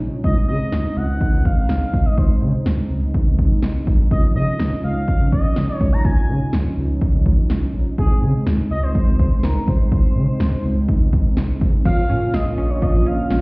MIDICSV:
0, 0, Header, 1, 8, 480
1, 0, Start_track
1, 0, Tempo, 483871
1, 239, Time_signature, 4, 2, 24, 8
1, 13306, End_track
2, 0, Start_track
2, 0, Title_t, "Analog synth lead"
2, 0, Program_c, 0, 81
2, 239, Note_on_c, 0, 75, 98
2, 462, Note_off_c, 0, 75, 0
2, 478, Note_on_c, 0, 75, 103
2, 960, Note_on_c, 0, 78, 115
2, 974, Note_off_c, 0, 75, 0
2, 1438, Note_on_c, 0, 77, 107
2, 1453, Note_off_c, 0, 78, 0
2, 2040, Note_on_c, 0, 75, 90
2, 2055, Note_off_c, 0, 77, 0
2, 2160, Note_on_c, 0, 72, 83
2, 2175, Note_off_c, 0, 75, 0
2, 2640, Note_off_c, 0, 72, 0
2, 4082, Note_on_c, 0, 75, 87
2, 4189, Note_off_c, 0, 75, 0
2, 4320, Note_on_c, 0, 75, 90
2, 4766, Note_off_c, 0, 75, 0
2, 4800, Note_on_c, 0, 77, 96
2, 5246, Note_off_c, 0, 77, 0
2, 5279, Note_on_c, 0, 75, 103
2, 5706, Note_off_c, 0, 75, 0
2, 5706, Note_on_c, 0, 73, 103
2, 5879, Note_on_c, 0, 82, 102
2, 5894, Note_off_c, 0, 73, 0
2, 5999, Note_on_c, 0, 80, 98
2, 6014, Note_off_c, 0, 82, 0
2, 6479, Note_off_c, 0, 80, 0
2, 7919, Note_on_c, 0, 68, 114
2, 8365, Note_off_c, 0, 68, 0
2, 8638, Note_on_c, 0, 75, 106
2, 8760, Note_on_c, 0, 72, 107
2, 8775, Note_off_c, 0, 75, 0
2, 9360, Note_on_c, 0, 70, 91
2, 9375, Note_off_c, 0, 72, 0
2, 9601, Note_on_c, 0, 72, 100
2, 9616, Note_off_c, 0, 70, 0
2, 11280, Note_off_c, 0, 72, 0
2, 11759, Note_on_c, 0, 77, 116
2, 12239, Note_on_c, 0, 75, 101
2, 12254, Note_off_c, 0, 77, 0
2, 12600, Note_on_c, 0, 73, 93
2, 12615, Note_off_c, 0, 75, 0
2, 12721, Note_on_c, 0, 75, 104
2, 12736, Note_off_c, 0, 73, 0
2, 12962, Note_on_c, 0, 77, 112
2, 12977, Note_off_c, 0, 75, 0
2, 13306, Note_off_c, 0, 77, 0
2, 13306, End_track
3, 0, Start_track
3, 0, Title_t, "Analog polysynth"
3, 0, Program_c, 1, 90
3, 0, Note_on_c, 1, 53, 67
3, 0, Note_on_c, 1, 61, 61
3, 0, Note_on_c, 1, 63, 73
3, 199, Note_off_c, 1, 53, 0
3, 199, Note_off_c, 1, 61, 0
3, 199, Note_off_c, 1, 63, 0
3, 239, Note_on_c, 1, 56, 68
3, 239, Note_on_c, 1, 60, 60
3, 239, Note_on_c, 1, 63, 74
3, 4039, Note_off_c, 1, 56, 0
3, 4039, Note_off_c, 1, 60, 0
3, 4039, Note_off_c, 1, 63, 0
3, 4078, Note_on_c, 1, 53, 66
3, 4078, Note_on_c, 1, 61, 59
3, 4078, Note_on_c, 1, 63, 71
3, 7879, Note_off_c, 1, 53, 0
3, 7879, Note_off_c, 1, 61, 0
3, 7879, Note_off_c, 1, 63, 0
3, 7918, Note_on_c, 1, 56, 65
3, 7918, Note_on_c, 1, 60, 60
3, 7918, Note_on_c, 1, 63, 75
3, 11719, Note_off_c, 1, 56, 0
3, 11719, Note_off_c, 1, 60, 0
3, 11719, Note_off_c, 1, 63, 0
3, 11758, Note_on_c, 1, 58, 69
3, 11758, Note_on_c, 1, 65, 73
3, 11759, Note_on_c, 1, 61, 62
3, 13306, Note_off_c, 1, 58, 0
3, 13306, Note_off_c, 1, 61, 0
3, 13306, Note_off_c, 1, 65, 0
3, 13306, End_track
4, 0, Start_track
4, 0, Title_t, "Synth arpeggio sound"
4, 0, Program_c, 2, 84
4, 11759, Note_on_c, 2, 53, 92
4, 11964, Note_off_c, 2, 53, 0
4, 11999, Note_on_c, 2, 61, 80
4, 12204, Note_off_c, 2, 61, 0
4, 12238, Note_on_c, 2, 77, 91
4, 12443, Note_off_c, 2, 77, 0
4, 12478, Note_on_c, 2, 61, 81
4, 12683, Note_off_c, 2, 61, 0
4, 12720, Note_on_c, 2, 53, 90
4, 12924, Note_off_c, 2, 53, 0
4, 12958, Note_on_c, 2, 61, 79
4, 13163, Note_off_c, 2, 61, 0
4, 13199, Note_on_c, 2, 61, 88
4, 13306, Note_off_c, 2, 61, 0
4, 13306, End_track
5, 0, Start_track
5, 0, Title_t, "Analog synth pad"
5, 0, Program_c, 3, 89
5, 11758, Note_on_c, 3, 65, 85
5, 11759, Note_on_c, 3, 49, 77
5, 11759, Note_on_c, 3, 58, 71
5, 13306, Note_off_c, 3, 49, 0
5, 13306, Note_off_c, 3, 58, 0
5, 13306, Note_off_c, 3, 65, 0
5, 13306, End_track
6, 0, Start_track
6, 0, Title_t, "Analog synth bass"
6, 0, Program_c, 4, 38
6, 0, Note_on_c, 4, 34, 88
6, 108, Note_off_c, 4, 34, 0
6, 239, Note_on_c, 4, 37, 106
6, 348, Note_off_c, 4, 37, 0
6, 478, Note_on_c, 4, 49, 96
6, 588, Note_off_c, 4, 49, 0
6, 718, Note_on_c, 4, 37, 107
6, 828, Note_off_c, 4, 37, 0
6, 958, Note_on_c, 4, 37, 101
6, 1068, Note_off_c, 4, 37, 0
6, 1078, Note_on_c, 4, 37, 88
6, 1188, Note_off_c, 4, 37, 0
6, 1318, Note_on_c, 4, 37, 101
6, 1428, Note_off_c, 4, 37, 0
6, 1441, Note_on_c, 4, 37, 94
6, 1550, Note_off_c, 4, 37, 0
6, 1678, Note_on_c, 4, 37, 106
6, 1788, Note_off_c, 4, 37, 0
6, 1920, Note_on_c, 4, 37, 100
6, 2029, Note_off_c, 4, 37, 0
6, 2159, Note_on_c, 4, 37, 101
6, 2268, Note_off_c, 4, 37, 0
6, 2398, Note_on_c, 4, 49, 100
6, 2508, Note_off_c, 4, 49, 0
6, 2639, Note_on_c, 4, 37, 103
6, 2748, Note_off_c, 4, 37, 0
6, 2879, Note_on_c, 4, 37, 99
6, 2988, Note_off_c, 4, 37, 0
6, 2999, Note_on_c, 4, 37, 91
6, 3109, Note_off_c, 4, 37, 0
6, 3239, Note_on_c, 4, 37, 95
6, 3348, Note_off_c, 4, 37, 0
6, 3360, Note_on_c, 4, 37, 92
6, 3469, Note_off_c, 4, 37, 0
6, 3598, Note_on_c, 4, 36, 96
6, 3708, Note_off_c, 4, 36, 0
6, 3840, Note_on_c, 4, 34, 85
6, 3949, Note_off_c, 4, 34, 0
6, 4078, Note_on_c, 4, 37, 104
6, 4188, Note_off_c, 4, 37, 0
6, 4319, Note_on_c, 4, 49, 97
6, 4428, Note_off_c, 4, 49, 0
6, 4559, Note_on_c, 4, 37, 102
6, 4668, Note_off_c, 4, 37, 0
6, 4799, Note_on_c, 4, 37, 101
6, 4908, Note_off_c, 4, 37, 0
6, 4919, Note_on_c, 4, 37, 88
6, 5029, Note_off_c, 4, 37, 0
6, 5159, Note_on_c, 4, 37, 88
6, 5269, Note_off_c, 4, 37, 0
6, 5280, Note_on_c, 4, 37, 98
6, 5389, Note_off_c, 4, 37, 0
6, 5519, Note_on_c, 4, 37, 103
6, 5629, Note_off_c, 4, 37, 0
6, 5760, Note_on_c, 4, 37, 99
6, 5869, Note_off_c, 4, 37, 0
6, 5999, Note_on_c, 4, 37, 99
6, 6108, Note_off_c, 4, 37, 0
6, 6239, Note_on_c, 4, 49, 93
6, 6348, Note_off_c, 4, 49, 0
6, 6479, Note_on_c, 4, 37, 105
6, 6588, Note_off_c, 4, 37, 0
6, 6719, Note_on_c, 4, 37, 102
6, 6828, Note_off_c, 4, 37, 0
6, 6838, Note_on_c, 4, 37, 93
6, 6948, Note_off_c, 4, 37, 0
6, 7078, Note_on_c, 4, 37, 94
6, 7188, Note_off_c, 4, 37, 0
6, 7201, Note_on_c, 4, 37, 97
6, 7309, Note_off_c, 4, 37, 0
6, 7439, Note_on_c, 4, 36, 89
6, 7548, Note_off_c, 4, 36, 0
6, 7679, Note_on_c, 4, 34, 86
6, 7788, Note_off_c, 4, 34, 0
6, 7919, Note_on_c, 4, 37, 102
6, 8028, Note_off_c, 4, 37, 0
6, 8158, Note_on_c, 4, 49, 104
6, 8268, Note_off_c, 4, 49, 0
6, 8398, Note_on_c, 4, 37, 101
6, 8508, Note_off_c, 4, 37, 0
6, 8638, Note_on_c, 4, 37, 91
6, 8748, Note_off_c, 4, 37, 0
6, 8759, Note_on_c, 4, 37, 103
6, 8868, Note_off_c, 4, 37, 0
6, 8998, Note_on_c, 4, 37, 95
6, 9108, Note_off_c, 4, 37, 0
6, 9121, Note_on_c, 4, 37, 95
6, 9229, Note_off_c, 4, 37, 0
6, 9358, Note_on_c, 4, 37, 94
6, 9468, Note_off_c, 4, 37, 0
6, 9600, Note_on_c, 4, 37, 99
6, 9709, Note_off_c, 4, 37, 0
6, 9839, Note_on_c, 4, 37, 102
6, 9948, Note_off_c, 4, 37, 0
6, 10078, Note_on_c, 4, 49, 102
6, 10188, Note_off_c, 4, 49, 0
6, 10319, Note_on_c, 4, 37, 101
6, 10428, Note_off_c, 4, 37, 0
6, 10559, Note_on_c, 4, 37, 101
6, 10668, Note_off_c, 4, 37, 0
6, 10678, Note_on_c, 4, 37, 98
6, 10788, Note_off_c, 4, 37, 0
6, 10918, Note_on_c, 4, 37, 94
6, 11028, Note_off_c, 4, 37, 0
6, 11041, Note_on_c, 4, 37, 94
6, 11149, Note_off_c, 4, 37, 0
6, 11277, Note_on_c, 4, 36, 96
6, 11387, Note_off_c, 4, 36, 0
6, 11520, Note_on_c, 4, 34, 95
6, 11629, Note_off_c, 4, 34, 0
6, 11759, Note_on_c, 4, 34, 106
6, 11868, Note_off_c, 4, 34, 0
6, 11999, Note_on_c, 4, 46, 94
6, 12108, Note_off_c, 4, 46, 0
6, 12239, Note_on_c, 4, 34, 107
6, 12348, Note_off_c, 4, 34, 0
6, 12479, Note_on_c, 4, 34, 100
6, 12588, Note_off_c, 4, 34, 0
6, 12598, Note_on_c, 4, 34, 93
6, 12708, Note_off_c, 4, 34, 0
6, 12838, Note_on_c, 4, 34, 96
6, 12948, Note_off_c, 4, 34, 0
6, 12958, Note_on_c, 4, 34, 96
6, 13068, Note_off_c, 4, 34, 0
6, 13199, Note_on_c, 4, 34, 106
6, 13306, Note_off_c, 4, 34, 0
6, 13306, End_track
7, 0, Start_track
7, 0, Title_t, "Downlifter"
7, 0, Program_c, 5, 103
7, 0, Note_on_c, 5, 60, 79
7, 239, Note_off_c, 5, 60, 0
7, 13306, End_track
8, 0, Start_track
8, 0, Title_t, "Drums"
8, 239, Note_on_c, 9, 36, 99
8, 338, Note_off_c, 9, 36, 0
8, 718, Note_on_c, 9, 38, 114
8, 817, Note_off_c, 9, 38, 0
8, 1199, Note_on_c, 9, 36, 99
8, 1298, Note_off_c, 9, 36, 0
8, 1441, Note_on_c, 9, 36, 87
8, 1540, Note_off_c, 9, 36, 0
8, 1678, Note_on_c, 9, 38, 99
8, 1778, Note_off_c, 9, 38, 0
8, 1920, Note_on_c, 9, 36, 94
8, 2020, Note_off_c, 9, 36, 0
8, 2159, Note_on_c, 9, 36, 94
8, 2258, Note_off_c, 9, 36, 0
8, 2638, Note_on_c, 9, 38, 116
8, 2737, Note_off_c, 9, 38, 0
8, 3119, Note_on_c, 9, 36, 98
8, 3218, Note_off_c, 9, 36, 0
8, 3360, Note_on_c, 9, 36, 83
8, 3460, Note_off_c, 9, 36, 0
8, 3596, Note_on_c, 9, 38, 95
8, 3695, Note_off_c, 9, 38, 0
8, 3840, Note_on_c, 9, 36, 95
8, 3939, Note_off_c, 9, 36, 0
8, 4079, Note_on_c, 9, 36, 101
8, 4178, Note_off_c, 9, 36, 0
8, 4558, Note_on_c, 9, 38, 112
8, 4657, Note_off_c, 9, 38, 0
8, 5039, Note_on_c, 9, 36, 101
8, 5138, Note_off_c, 9, 36, 0
8, 5281, Note_on_c, 9, 36, 85
8, 5380, Note_off_c, 9, 36, 0
8, 5518, Note_on_c, 9, 38, 99
8, 5617, Note_off_c, 9, 38, 0
8, 5760, Note_on_c, 9, 36, 98
8, 5860, Note_off_c, 9, 36, 0
8, 5999, Note_on_c, 9, 36, 96
8, 6098, Note_off_c, 9, 36, 0
8, 6478, Note_on_c, 9, 38, 113
8, 6577, Note_off_c, 9, 38, 0
8, 6958, Note_on_c, 9, 36, 99
8, 7058, Note_off_c, 9, 36, 0
8, 7201, Note_on_c, 9, 36, 83
8, 7300, Note_off_c, 9, 36, 0
8, 7438, Note_on_c, 9, 38, 98
8, 7538, Note_off_c, 9, 38, 0
8, 7919, Note_on_c, 9, 36, 100
8, 8018, Note_off_c, 9, 36, 0
8, 8398, Note_on_c, 9, 38, 112
8, 8497, Note_off_c, 9, 38, 0
8, 8879, Note_on_c, 9, 36, 94
8, 8978, Note_off_c, 9, 36, 0
8, 9121, Note_on_c, 9, 36, 86
8, 9220, Note_off_c, 9, 36, 0
8, 9359, Note_on_c, 9, 38, 100
8, 9458, Note_off_c, 9, 38, 0
8, 9600, Note_on_c, 9, 36, 92
8, 9699, Note_off_c, 9, 36, 0
8, 9839, Note_on_c, 9, 36, 97
8, 9938, Note_off_c, 9, 36, 0
8, 10318, Note_on_c, 9, 38, 115
8, 10417, Note_off_c, 9, 38, 0
8, 10799, Note_on_c, 9, 36, 102
8, 10898, Note_off_c, 9, 36, 0
8, 11041, Note_on_c, 9, 36, 85
8, 11140, Note_off_c, 9, 36, 0
8, 11278, Note_on_c, 9, 38, 96
8, 11377, Note_off_c, 9, 38, 0
8, 11520, Note_on_c, 9, 36, 97
8, 11619, Note_off_c, 9, 36, 0
8, 11759, Note_on_c, 9, 36, 99
8, 11759, Note_on_c, 9, 49, 88
8, 11858, Note_off_c, 9, 36, 0
8, 11858, Note_off_c, 9, 49, 0
8, 12239, Note_on_c, 9, 38, 112
8, 12338, Note_off_c, 9, 38, 0
8, 12719, Note_on_c, 9, 36, 96
8, 12818, Note_off_c, 9, 36, 0
8, 13198, Note_on_c, 9, 38, 99
8, 13297, Note_off_c, 9, 38, 0
8, 13306, End_track
0, 0, End_of_file